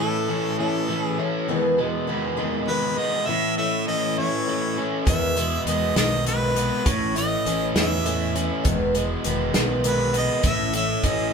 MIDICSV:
0, 0, Header, 1, 6, 480
1, 0, Start_track
1, 0, Key_signature, 4, "major"
1, 0, Tempo, 597015
1, 1193, Time_signature, 6, 3, 24, 8
1, 9112, End_track
2, 0, Start_track
2, 0, Title_t, "Harmonica"
2, 0, Program_c, 0, 22
2, 0, Note_on_c, 0, 69, 69
2, 440, Note_off_c, 0, 69, 0
2, 471, Note_on_c, 0, 69, 68
2, 833, Note_off_c, 0, 69, 0
2, 833, Note_on_c, 0, 68, 68
2, 980, Note_off_c, 0, 68, 0
2, 2152, Note_on_c, 0, 71, 87
2, 2395, Note_on_c, 0, 75, 86
2, 2407, Note_off_c, 0, 71, 0
2, 2623, Note_on_c, 0, 76, 100
2, 2635, Note_off_c, 0, 75, 0
2, 2868, Note_off_c, 0, 76, 0
2, 2873, Note_on_c, 0, 76, 84
2, 3096, Note_off_c, 0, 76, 0
2, 3113, Note_on_c, 0, 75, 84
2, 3363, Note_on_c, 0, 73, 88
2, 3375, Note_off_c, 0, 75, 0
2, 3898, Note_off_c, 0, 73, 0
2, 4078, Note_on_c, 0, 76, 92
2, 4524, Note_off_c, 0, 76, 0
2, 4564, Note_on_c, 0, 75, 80
2, 4782, Note_off_c, 0, 75, 0
2, 4800, Note_on_c, 0, 75, 89
2, 5020, Note_off_c, 0, 75, 0
2, 5046, Note_on_c, 0, 71, 84
2, 5528, Note_on_c, 0, 73, 85
2, 5540, Note_off_c, 0, 71, 0
2, 5761, Note_off_c, 0, 73, 0
2, 5769, Note_on_c, 0, 75, 86
2, 6209, Note_off_c, 0, 75, 0
2, 6258, Note_on_c, 0, 76, 81
2, 6754, Note_off_c, 0, 76, 0
2, 7932, Note_on_c, 0, 71, 79
2, 8146, Note_off_c, 0, 71, 0
2, 8178, Note_on_c, 0, 75, 82
2, 8389, Note_off_c, 0, 75, 0
2, 8408, Note_on_c, 0, 76, 91
2, 8623, Note_off_c, 0, 76, 0
2, 8650, Note_on_c, 0, 76, 88
2, 8882, Note_on_c, 0, 75, 81
2, 8894, Note_off_c, 0, 76, 0
2, 9112, Note_off_c, 0, 75, 0
2, 9112, End_track
3, 0, Start_track
3, 0, Title_t, "Twelve-string acoustic guitar"
3, 0, Program_c, 1, 25
3, 0, Note_on_c, 1, 64, 48
3, 6, Note_on_c, 1, 61, 39
3, 16, Note_on_c, 1, 57, 34
3, 227, Note_off_c, 1, 57, 0
3, 230, Note_on_c, 1, 52, 55
3, 231, Note_off_c, 1, 61, 0
3, 234, Note_off_c, 1, 64, 0
3, 237, Note_on_c, 1, 57, 53
3, 241, Note_on_c, 1, 61, 60
3, 246, Note_on_c, 1, 64, 61
3, 469, Note_off_c, 1, 64, 0
3, 472, Note_off_c, 1, 52, 0
3, 472, Note_off_c, 1, 61, 0
3, 475, Note_off_c, 1, 57, 0
3, 479, Note_on_c, 1, 64, 57
3, 482, Note_on_c, 1, 61, 59
3, 484, Note_on_c, 1, 57, 56
3, 489, Note_on_c, 1, 45, 49
3, 489, Note_on_c, 1, 52, 52
3, 703, Note_off_c, 1, 52, 0
3, 710, Note_off_c, 1, 57, 0
3, 713, Note_on_c, 1, 52, 57
3, 716, Note_off_c, 1, 64, 0
3, 717, Note_off_c, 1, 61, 0
3, 719, Note_on_c, 1, 57, 62
3, 721, Note_off_c, 1, 45, 0
3, 726, Note_on_c, 1, 61, 59
3, 731, Note_on_c, 1, 64, 67
3, 944, Note_off_c, 1, 64, 0
3, 950, Note_off_c, 1, 61, 0
3, 953, Note_off_c, 1, 52, 0
3, 954, Note_on_c, 1, 64, 44
3, 956, Note_off_c, 1, 57, 0
3, 959, Note_on_c, 1, 61, 40
3, 966, Note_on_c, 1, 57, 34
3, 1192, Note_on_c, 1, 40, 74
3, 1193, Note_off_c, 1, 64, 0
3, 1195, Note_off_c, 1, 57, 0
3, 1196, Note_off_c, 1, 61, 0
3, 1196, Note_on_c, 1, 47, 71
3, 1198, Note_on_c, 1, 51, 71
3, 1198, Note_on_c, 1, 56, 77
3, 1201, Note_on_c, 1, 59, 77
3, 1202, Note_on_c, 1, 68, 84
3, 1421, Note_off_c, 1, 68, 0
3, 1426, Note_off_c, 1, 59, 0
3, 1430, Note_on_c, 1, 68, 55
3, 1432, Note_off_c, 1, 40, 0
3, 1433, Note_off_c, 1, 56, 0
3, 1434, Note_off_c, 1, 47, 0
3, 1435, Note_off_c, 1, 51, 0
3, 1436, Note_on_c, 1, 59, 47
3, 1442, Note_on_c, 1, 56, 45
3, 1448, Note_on_c, 1, 51, 40
3, 1655, Note_off_c, 1, 51, 0
3, 1665, Note_on_c, 1, 51, 64
3, 1666, Note_off_c, 1, 56, 0
3, 1671, Note_off_c, 1, 59, 0
3, 1672, Note_off_c, 1, 68, 0
3, 1675, Note_on_c, 1, 56, 69
3, 1680, Note_on_c, 1, 59, 69
3, 1685, Note_on_c, 1, 68, 71
3, 1893, Note_off_c, 1, 68, 0
3, 1895, Note_off_c, 1, 59, 0
3, 1898, Note_off_c, 1, 51, 0
3, 1898, Note_off_c, 1, 56, 0
3, 1902, Note_on_c, 1, 68, 73
3, 1904, Note_on_c, 1, 59, 64
3, 1908, Note_on_c, 1, 51, 61
3, 1908, Note_on_c, 1, 56, 68
3, 1910, Note_on_c, 1, 47, 56
3, 1911, Note_on_c, 1, 40, 56
3, 2140, Note_off_c, 1, 51, 0
3, 2145, Note_off_c, 1, 56, 0
3, 2147, Note_off_c, 1, 68, 0
3, 2149, Note_off_c, 1, 59, 0
3, 2150, Note_on_c, 1, 51, 61
3, 2151, Note_off_c, 1, 47, 0
3, 2152, Note_off_c, 1, 40, 0
3, 2154, Note_on_c, 1, 56, 59
3, 2162, Note_on_c, 1, 59, 57
3, 2165, Note_on_c, 1, 68, 67
3, 2379, Note_off_c, 1, 68, 0
3, 2385, Note_off_c, 1, 59, 0
3, 2389, Note_on_c, 1, 68, 50
3, 2391, Note_off_c, 1, 51, 0
3, 2393, Note_off_c, 1, 56, 0
3, 2395, Note_on_c, 1, 59, 45
3, 2402, Note_on_c, 1, 56, 37
3, 2406, Note_on_c, 1, 51, 35
3, 2627, Note_on_c, 1, 45, 63
3, 2630, Note_off_c, 1, 51, 0
3, 2631, Note_off_c, 1, 56, 0
3, 2631, Note_off_c, 1, 68, 0
3, 2633, Note_on_c, 1, 52, 69
3, 2634, Note_off_c, 1, 59, 0
3, 2635, Note_on_c, 1, 57, 67
3, 2638, Note_on_c, 1, 61, 69
3, 2639, Note_on_c, 1, 64, 76
3, 2863, Note_off_c, 1, 64, 0
3, 2869, Note_off_c, 1, 61, 0
3, 2870, Note_off_c, 1, 45, 0
3, 2873, Note_off_c, 1, 52, 0
3, 2873, Note_on_c, 1, 64, 45
3, 2874, Note_off_c, 1, 57, 0
3, 2878, Note_on_c, 1, 61, 41
3, 2885, Note_on_c, 1, 57, 34
3, 3101, Note_off_c, 1, 57, 0
3, 3101, Note_on_c, 1, 52, 50
3, 3104, Note_off_c, 1, 61, 0
3, 3108, Note_off_c, 1, 64, 0
3, 3110, Note_on_c, 1, 57, 61
3, 3114, Note_on_c, 1, 61, 61
3, 3118, Note_on_c, 1, 64, 54
3, 3343, Note_off_c, 1, 64, 0
3, 3347, Note_off_c, 1, 52, 0
3, 3348, Note_off_c, 1, 61, 0
3, 3352, Note_off_c, 1, 57, 0
3, 3353, Note_on_c, 1, 64, 61
3, 3358, Note_on_c, 1, 61, 57
3, 3362, Note_on_c, 1, 57, 49
3, 3364, Note_on_c, 1, 45, 46
3, 3364, Note_on_c, 1, 52, 48
3, 3581, Note_off_c, 1, 52, 0
3, 3586, Note_off_c, 1, 57, 0
3, 3591, Note_on_c, 1, 52, 51
3, 3593, Note_off_c, 1, 61, 0
3, 3593, Note_off_c, 1, 64, 0
3, 3596, Note_on_c, 1, 57, 57
3, 3598, Note_off_c, 1, 45, 0
3, 3602, Note_on_c, 1, 61, 58
3, 3606, Note_on_c, 1, 64, 56
3, 3820, Note_off_c, 1, 64, 0
3, 3828, Note_off_c, 1, 61, 0
3, 3830, Note_on_c, 1, 64, 41
3, 3832, Note_off_c, 1, 52, 0
3, 3834, Note_off_c, 1, 57, 0
3, 3838, Note_on_c, 1, 61, 41
3, 3844, Note_on_c, 1, 57, 36
3, 4062, Note_on_c, 1, 40, 69
3, 4063, Note_on_c, 1, 47, 65
3, 4065, Note_off_c, 1, 57, 0
3, 4066, Note_on_c, 1, 51, 66
3, 4068, Note_on_c, 1, 56, 70
3, 4069, Note_off_c, 1, 61, 0
3, 4070, Note_off_c, 1, 64, 0
3, 4072, Note_on_c, 1, 59, 69
3, 4073, Note_on_c, 1, 68, 74
3, 4301, Note_off_c, 1, 68, 0
3, 4303, Note_off_c, 1, 59, 0
3, 4308, Note_off_c, 1, 40, 0
3, 4308, Note_off_c, 1, 47, 0
3, 4309, Note_off_c, 1, 56, 0
3, 4310, Note_off_c, 1, 51, 0
3, 4310, Note_on_c, 1, 68, 43
3, 4312, Note_on_c, 1, 59, 40
3, 4319, Note_on_c, 1, 56, 40
3, 4324, Note_on_c, 1, 51, 36
3, 4540, Note_off_c, 1, 51, 0
3, 4542, Note_off_c, 1, 56, 0
3, 4550, Note_on_c, 1, 51, 53
3, 4552, Note_off_c, 1, 68, 0
3, 4552, Note_on_c, 1, 56, 59
3, 4553, Note_off_c, 1, 59, 0
3, 4562, Note_on_c, 1, 68, 57
3, 4563, Note_on_c, 1, 59, 67
3, 4781, Note_off_c, 1, 68, 0
3, 4783, Note_off_c, 1, 56, 0
3, 4784, Note_off_c, 1, 59, 0
3, 4788, Note_off_c, 1, 51, 0
3, 4791, Note_on_c, 1, 68, 54
3, 4793, Note_on_c, 1, 56, 59
3, 4794, Note_on_c, 1, 59, 56
3, 4798, Note_on_c, 1, 47, 48
3, 4798, Note_on_c, 1, 51, 53
3, 4801, Note_on_c, 1, 40, 46
3, 5020, Note_off_c, 1, 51, 0
3, 5027, Note_off_c, 1, 56, 0
3, 5030, Note_on_c, 1, 51, 54
3, 5032, Note_off_c, 1, 68, 0
3, 5034, Note_off_c, 1, 59, 0
3, 5036, Note_off_c, 1, 47, 0
3, 5037, Note_off_c, 1, 40, 0
3, 5037, Note_on_c, 1, 56, 57
3, 5043, Note_on_c, 1, 59, 60
3, 5045, Note_on_c, 1, 68, 61
3, 5260, Note_off_c, 1, 68, 0
3, 5269, Note_off_c, 1, 59, 0
3, 5269, Note_on_c, 1, 68, 45
3, 5272, Note_off_c, 1, 51, 0
3, 5272, Note_off_c, 1, 56, 0
3, 5279, Note_on_c, 1, 59, 48
3, 5282, Note_on_c, 1, 56, 39
3, 5288, Note_on_c, 1, 51, 35
3, 5510, Note_on_c, 1, 45, 70
3, 5512, Note_off_c, 1, 68, 0
3, 5514, Note_off_c, 1, 51, 0
3, 5516, Note_off_c, 1, 59, 0
3, 5517, Note_off_c, 1, 56, 0
3, 5517, Note_on_c, 1, 52, 66
3, 5520, Note_on_c, 1, 57, 68
3, 5521, Note_on_c, 1, 61, 76
3, 5522, Note_on_c, 1, 64, 74
3, 5744, Note_off_c, 1, 64, 0
3, 5752, Note_off_c, 1, 45, 0
3, 5753, Note_off_c, 1, 61, 0
3, 5754, Note_on_c, 1, 64, 40
3, 5756, Note_off_c, 1, 52, 0
3, 5757, Note_off_c, 1, 57, 0
3, 5763, Note_on_c, 1, 61, 41
3, 5767, Note_on_c, 1, 57, 35
3, 5987, Note_off_c, 1, 57, 0
3, 5991, Note_off_c, 1, 61, 0
3, 5991, Note_on_c, 1, 52, 57
3, 5994, Note_off_c, 1, 64, 0
3, 5997, Note_on_c, 1, 57, 59
3, 6001, Note_on_c, 1, 61, 65
3, 6011, Note_on_c, 1, 64, 59
3, 6218, Note_off_c, 1, 64, 0
3, 6224, Note_off_c, 1, 61, 0
3, 6227, Note_on_c, 1, 64, 56
3, 6228, Note_off_c, 1, 57, 0
3, 6229, Note_off_c, 1, 52, 0
3, 6233, Note_on_c, 1, 61, 54
3, 6238, Note_on_c, 1, 57, 54
3, 6239, Note_on_c, 1, 52, 53
3, 6243, Note_on_c, 1, 45, 47
3, 6463, Note_off_c, 1, 52, 0
3, 6465, Note_off_c, 1, 57, 0
3, 6471, Note_off_c, 1, 64, 0
3, 6473, Note_on_c, 1, 52, 57
3, 6474, Note_off_c, 1, 61, 0
3, 6475, Note_on_c, 1, 57, 59
3, 6479, Note_off_c, 1, 45, 0
3, 6482, Note_on_c, 1, 61, 60
3, 6484, Note_on_c, 1, 64, 63
3, 6698, Note_off_c, 1, 64, 0
3, 6707, Note_on_c, 1, 64, 47
3, 6710, Note_off_c, 1, 61, 0
3, 6713, Note_off_c, 1, 52, 0
3, 6713, Note_off_c, 1, 57, 0
3, 6720, Note_on_c, 1, 61, 42
3, 6722, Note_on_c, 1, 57, 37
3, 6945, Note_on_c, 1, 40, 72
3, 6951, Note_off_c, 1, 64, 0
3, 6952, Note_on_c, 1, 47, 76
3, 6955, Note_off_c, 1, 57, 0
3, 6955, Note_off_c, 1, 61, 0
3, 6955, Note_on_c, 1, 51, 74
3, 6958, Note_on_c, 1, 56, 80
3, 6958, Note_on_c, 1, 59, 84
3, 6958, Note_on_c, 1, 68, 87
3, 7184, Note_off_c, 1, 68, 0
3, 7190, Note_off_c, 1, 40, 0
3, 7193, Note_off_c, 1, 47, 0
3, 7193, Note_off_c, 1, 59, 0
3, 7194, Note_on_c, 1, 68, 54
3, 7195, Note_off_c, 1, 51, 0
3, 7196, Note_off_c, 1, 56, 0
3, 7202, Note_on_c, 1, 59, 48
3, 7209, Note_on_c, 1, 56, 41
3, 7213, Note_on_c, 1, 51, 45
3, 7430, Note_off_c, 1, 51, 0
3, 7430, Note_off_c, 1, 56, 0
3, 7434, Note_off_c, 1, 68, 0
3, 7438, Note_off_c, 1, 59, 0
3, 7439, Note_on_c, 1, 51, 62
3, 7440, Note_on_c, 1, 56, 68
3, 7447, Note_on_c, 1, 59, 68
3, 7455, Note_on_c, 1, 68, 66
3, 7670, Note_off_c, 1, 59, 0
3, 7670, Note_off_c, 1, 68, 0
3, 7676, Note_off_c, 1, 51, 0
3, 7677, Note_off_c, 1, 56, 0
3, 7680, Note_on_c, 1, 59, 69
3, 7680, Note_on_c, 1, 68, 72
3, 7685, Note_on_c, 1, 51, 56
3, 7686, Note_on_c, 1, 56, 58
3, 7689, Note_on_c, 1, 47, 61
3, 7690, Note_on_c, 1, 40, 56
3, 7901, Note_off_c, 1, 51, 0
3, 7907, Note_off_c, 1, 56, 0
3, 7911, Note_on_c, 1, 51, 60
3, 7913, Note_off_c, 1, 59, 0
3, 7916, Note_off_c, 1, 68, 0
3, 7916, Note_on_c, 1, 56, 60
3, 7921, Note_off_c, 1, 47, 0
3, 7922, Note_off_c, 1, 40, 0
3, 7922, Note_on_c, 1, 59, 58
3, 7925, Note_on_c, 1, 68, 67
3, 8144, Note_off_c, 1, 68, 0
3, 8148, Note_off_c, 1, 59, 0
3, 8152, Note_off_c, 1, 51, 0
3, 8154, Note_off_c, 1, 56, 0
3, 8154, Note_on_c, 1, 68, 46
3, 8158, Note_on_c, 1, 59, 46
3, 8167, Note_on_c, 1, 56, 45
3, 8168, Note_on_c, 1, 51, 35
3, 8391, Note_off_c, 1, 51, 0
3, 8391, Note_on_c, 1, 45, 68
3, 8393, Note_off_c, 1, 56, 0
3, 8393, Note_off_c, 1, 68, 0
3, 8394, Note_on_c, 1, 52, 71
3, 8395, Note_off_c, 1, 59, 0
3, 8396, Note_on_c, 1, 57, 67
3, 8399, Note_on_c, 1, 61, 72
3, 8400, Note_on_c, 1, 64, 77
3, 8619, Note_off_c, 1, 64, 0
3, 8627, Note_off_c, 1, 61, 0
3, 8628, Note_on_c, 1, 64, 45
3, 8631, Note_off_c, 1, 45, 0
3, 8633, Note_off_c, 1, 52, 0
3, 8634, Note_off_c, 1, 57, 0
3, 8637, Note_on_c, 1, 61, 41
3, 8646, Note_on_c, 1, 57, 38
3, 8866, Note_off_c, 1, 57, 0
3, 8870, Note_off_c, 1, 64, 0
3, 8870, Note_on_c, 1, 52, 60
3, 8871, Note_off_c, 1, 61, 0
3, 8875, Note_on_c, 1, 57, 56
3, 8881, Note_on_c, 1, 61, 62
3, 8885, Note_on_c, 1, 64, 64
3, 9099, Note_off_c, 1, 64, 0
3, 9106, Note_off_c, 1, 61, 0
3, 9107, Note_off_c, 1, 57, 0
3, 9108, Note_off_c, 1, 52, 0
3, 9112, End_track
4, 0, Start_track
4, 0, Title_t, "Overdriven electric guitar"
4, 0, Program_c, 2, 29
4, 0, Note_on_c, 2, 45, 59
4, 952, Note_off_c, 2, 45, 0
4, 9112, End_track
5, 0, Start_track
5, 0, Title_t, "Fingered electric bass"
5, 0, Program_c, 3, 33
5, 4076, Note_on_c, 3, 40, 93
5, 4470, Note_off_c, 3, 40, 0
5, 4548, Note_on_c, 3, 40, 77
5, 4748, Note_off_c, 3, 40, 0
5, 4791, Note_on_c, 3, 35, 89
5, 5385, Note_off_c, 3, 35, 0
5, 5516, Note_on_c, 3, 33, 96
5, 5911, Note_off_c, 3, 33, 0
5, 5997, Note_on_c, 3, 33, 83
5, 6193, Note_off_c, 3, 33, 0
5, 6232, Note_on_c, 3, 40, 94
5, 6825, Note_off_c, 3, 40, 0
5, 6956, Note_on_c, 3, 28, 93
5, 7350, Note_off_c, 3, 28, 0
5, 7436, Note_on_c, 3, 28, 88
5, 7633, Note_off_c, 3, 28, 0
5, 7678, Note_on_c, 3, 35, 86
5, 8268, Note_off_c, 3, 35, 0
5, 8394, Note_on_c, 3, 33, 94
5, 8788, Note_off_c, 3, 33, 0
5, 8873, Note_on_c, 3, 33, 78
5, 9070, Note_off_c, 3, 33, 0
5, 9112, End_track
6, 0, Start_track
6, 0, Title_t, "Drums"
6, 4075, Note_on_c, 9, 36, 100
6, 4075, Note_on_c, 9, 42, 73
6, 4155, Note_off_c, 9, 36, 0
6, 4156, Note_off_c, 9, 42, 0
6, 4314, Note_on_c, 9, 42, 56
6, 4395, Note_off_c, 9, 42, 0
6, 4557, Note_on_c, 9, 42, 59
6, 4638, Note_off_c, 9, 42, 0
6, 4794, Note_on_c, 9, 38, 88
6, 4794, Note_on_c, 9, 42, 78
6, 4875, Note_off_c, 9, 38, 0
6, 4875, Note_off_c, 9, 42, 0
6, 5036, Note_on_c, 9, 42, 59
6, 5117, Note_off_c, 9, 42, 0
6, 5277, Note_on_c, 9, 42, 56
6, 5357, Note_off_c, 9, 42, 0
6, 5516, Note_on_c, 9, 36, 98
6, 5516, Note_on_c, 9, 42, 76
6, 5596, Note_off_c, 9, 36, 0
6, 5596, Note_off_c, 9, 42, 0
6, 5758, Note_on_c, 9, 42, 56
6, 5838, Note_off_c, 9, 42, 0
6, 6001, Note_on_c, 9, 42, 54
6, 6081, Note_off_c, 9, 42, 0
6, 6237, Note_on_c, 9, 38, 101
6, 6237, Note_on_c, 9, 42, 65
6, 6317, Note_off_c, 9, 38, 0
6, 6317, Note_off_c, 9, 42, 0
6, 6479, Note_on_c, 9, 42, 54
6, 6559, Note_off_c, 9, 42, 0
6, 6718, Note_on_c, 9, 42, 53
6, 6799, Note_off_c, 9, 42, 0
6, 6952, Note_on_c, 9, 42, 69
6, 6956, Note_on_c, 9, 36, 93
6, 7033, Note_off_c, 9, 42, 0
6, 7036, Note_off_c, 9, 36, 0
6, 7193, Note_on_c, 9, 42, 55
6, 7274, Note_off_c, 9, 42, 0
6, 7432, Note_on_c, 9, 42, 57
6, 7512, Note_off_c, 9, 42, 0
6, 7672, Note_on_c, 9, 38, 100
6, 7672, Note_on_c, 9, 42, 72
6, 7752, Note_off_c, 9, 38, 0
6, 7752, Note_off_c, 9, 42, 0
6, 7911, Note_on_c, 9, 42, 61
6, 7992, Note_off_c, 9, 42, 0
6, 8152, Note_on_c, 9, 42, 56
6, 8232, Note_off_c, 9, 42, 0
6, 8388, Note_on_c, 9, 42, 72
6, 8392, Note_on_c, 9, 36, 97
6, 8469, Note_off_c, 9, 42, 0
6, 8473, Note_off_c, 9, 36, 0
6, 8630, Note_on_c, 9, 42, 57
6, 8711, Note_off_c, 9, 42, 0
6, 8872, Note_on_c, 9, 42, 57
6, 8873, Note_on_c, 9, 36, 69
6, 8952, Note_off_c, 9, 42, 0
6, 8953, Note_off_c, 9, 36, 0
6, 9112, End_track
0, 0, End_of_file